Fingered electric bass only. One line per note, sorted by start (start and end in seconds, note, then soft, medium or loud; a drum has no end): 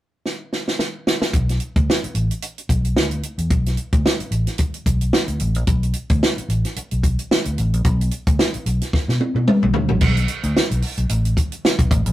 1.33 1.57 B1 medium
1.76 1.86 D2 medium
2.03 muted fingered electric bass stroke soft
2.15 2.28 A1 medium
2.69 2.93 B1 medium
2.96 3.20 D2 medium
3.38 3.49 E2 medium
3.51 3.75 B1 medium
3.93 4.03 D2 medium
4.20 muted fingered electric bass stroke soft
4.31 4.45 A1 medium
4.86 5.10 B1 medium
5.28 5.39 D2 medium
5.40 5.56 A1 loud
5.56 5.66 A#1 medium
5.68 5.92 B1 medium
6.10 6.21 D2 medium
6.38 muted fingered electric bass stroke soft
6.48 6.62 A1 medium
6.76 muted fingered electric bass stroke soft
6.92 7.16 B1 medium
7.46 7.56 D2 medium
7.58 7.74 A1 medium
7.74 7.84 A#1 medium
7.85 8.09 B1 loud
8.27 8.37 D2 medium
8.55 muted fingered electric bass stroke soft
8.66 8.79 B1 medium
9.08 9.19 B2 medium
9.35 9.45 B2 medium
9.63 9.73 B1 medium
9.75 9.88 D2 medium
9.90 10.00 A#1 medium
10.02 10.25 B1 loud
10.44 10.54 D2 loud
10.71 10.81 B1 medium
10.98 11.08 B1 medium
11.09 11.33 A1 medium
11.79 11.89 B1 medium
11.91 12.04 A1 medium
12.06 12.12 A#1 medium